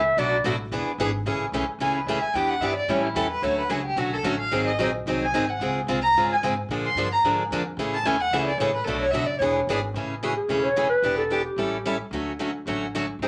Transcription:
Already playing: C#2 E5
0.17 B1 B2 F#3 A3 D4 F#4 D5
0.44 A1 B2 F#3 A3 D4 F#4
0.71 E1 E3 B3 D4 G#4
0.86 muted upright bass stroke
0.98 G#1 E3 B3 D4 G#4
1.26 A1 C#3 E3 A3 C#4 G#4
1.52 B1 C#3 E3 A3 C#4 G#4
1.67 muted upright bass stroke
1.78 C#2 C#3 E3 A3 C#4 G#4 G#5
1.95 B4
2.06 D2 C#3 E3 A3 C#4 G#4 E5
2.21 G#5, muted upright bass stroke
2.34 E2 E3 B3 D4 G4 G5
2.49 F#5
2.60 G2 E3 B3 D4 G4 E5
2.76 D5
2.88 A2 E3 G3 C#4 E4 A4 C#5
3.04 E4
3.15 E2 E3 G3 C#4 E4 G4 A4
3.30 B4
3.42 D2 D3 F#3 A3 C#4 F#4 C#5
3.58 B4
3.69 C#2 D3 F#3 A3 C#4 F#4 G#4
3.85 G4
3.96 B1 D3 F#3 A3 C#4 F#4
4.13 A4
4.23 A1 D3 F#3 A3 C#4 F#4
4.39 F5
4.51 G#1 D#3 F#3 C4 D#4 G#4
4.66 D#5
4.78 A#1 D#3 F#3 C4 D#4 G#4
5.06 C2 D#3 F#3 C4 D#4 G#4
5.23 G#5
5.33 G#1 D#3 F#3 C4 D#4 G#4
5.49 F#5
5.60 C#2 C#3 G#3 C4 F4 G#4
5.87 C2 C#3 G#3 C4 F4 G#4
6.02 A#5
6.14 G2 C#3 G#3 C4 F4 G#4
6.33 G#5
6.42 G#2 C#3 G#3 C4 F4 G#4
6.68 A#2 D3 F3 A#3 D4 G#4
6.86 C6
6.95 G2 D3 F3 A#3 D4 G#4
7.12 A#5
7.23 G#2 D3 F3 A#3 D4 G#4
7.51 F2 D3 F3 A#3 D4 G#4
7.77 A2 C#3 E3 A3 C#4 G#4
7.94 A5
8.04 E2 C#3 E3 A3 C#4 G#4 G#5
8.21 F#5
8.31 C#2 C#3 E3 A3 C#4 G#4 E5
8.47 D5
8.58 A1 C#3 E3 A3 C#4 G#4 C#5
8.75 B4
8.85 B1 B2 F#3 A3 D4 F#4 A4
8.99 C#5
9.11 F#1 B2 F#3 A3 D4 F#4 E5
9.26 D5
9.39 E1 E3 B3 D4 G#4 C#5
9.67 G#1 E3 B3 D4 G#4
9.94 A1 C#3 E3 A3 C#4 G#4
10.23 C#3 E3 A3 C#4 F#4 G#4
10.37 G#4
10.48 E1 C#3 E3 A3 C#4 G#4
10.63 C#5
10.76 C#3 E3 A3 C#4 G#4
10.90 B4
11.02 E1 E3 B3 D4 G4
11.17 A4
11.30 E3 B3 D4 G4
11.44 G4
11.56 A1 E3 G3 C#4 E4 A4
11.85 E3 G3 C#4 E4 A4
12.11 D2 D3 F#3 A3 C#4 F#4
12.39 D3 F#3 A3 C#4 F#4
12.66 A1 D3 F#3 A3 C#4 F#4
12.95 D3 F#3 A3 C#4 F#4
13.19 G#1 D#3 F#3 C4 D#4
13.23 G#4

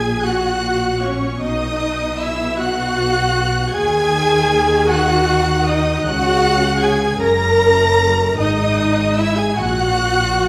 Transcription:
Already playing: A#1 A#2 G#4 G#5 G#6
0.24 F#4 F#5 F#6
1.01 C#4 C#5 C#6
1.41 B1 B2 D#4 D#5 D#6
2.20 E4 E5 E6
2.59 F#4 F#5 F#6
3.73 D#2 D#3 G#4 G#5 G#6
4.91 F#4 F#5 F#6
5.68 D#4 D#5 D#6
6.06 C#2 C#3 F#4 F#5 F#6
6.81 G#4 G#5 G#6
7.20 F#1 F#2 A#4 A#5 A#6
8.38 G#1 G#2 D#4 D#5 D#6
9.17 E4 E5 E6
9.37 G#4 G#5 G#6
9.56 A#1 A#2 F#4 F#5 F#6

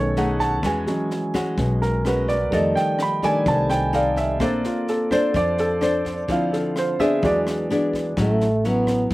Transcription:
Already playing: B1 B2 D#3 A3 C#4 D#4 G#4 A4 C#5
0.16 A3 D#4 G#4 F#5, snare
0.39 A5, kick, snare
0.63 E2 E3 G#3 C#4 F#4 G#5, kick, cross-stick, snare
0.87 F#3 G#3 C#4, snare
1.10 snare
1.34 G#3 C#4 F#4, kick, cross-stick, snare
1.57 B1 B2, kick, snare
1.82 A#4, snare
2.05 G#3 C#4 F#4 B4, cross-stick, snare
2.28 D5, kick, snare
2.51 F2 D#3 F3 G3 A3 D#4 A4 D5 D#5, kick, snare
2.75 G5, snare
2.99 B5, cross-stick, snare
3.23 D#3 G3 A3 D4 D#4 A4 D5 G#5, kick, snare
3.46 C2 C3 A5, kick, snare
3.70 G5, cross-stick, snare
3.93 D#4 A4 D5 F5, snare
4.16 E5, kick, snare
4.40 A#1 A#3 C4 D4 A4 C5 D5, kick, cross-stick, snare
4.64 F4, snare
4.87 A4, snare
5.11 D4 A4 C5, kick, cross-stick, snare
5.34 F2 F3 D5, kick, snare
5.57 A4, snare
5.81 D4 A4 C5, cross-stick, snare
6.05 kick, snare
6.28 D2 D3 F3 C4 E4 F5, kick, snare
6.53 A4, snare
6.76 C5, cross-stick, snare
6.99 B3 D4 G#4 E5, kick, snare
7.22 E2 E3 F#3 G#3 D4 D5, kick, snare
7.47 cross-stick, snare
7.70 B3 D4 G#4, snare
7.93 kick, snare
8.17 A1 A2 F#3 A3 C#4 E4, kick, cross-stick, snare
8.40 snare
8.64 F#3 C#4 E4, snare
8.68 B3
8.87 kick, cross-stick, snare
9.10 E2 E3, kick, snare

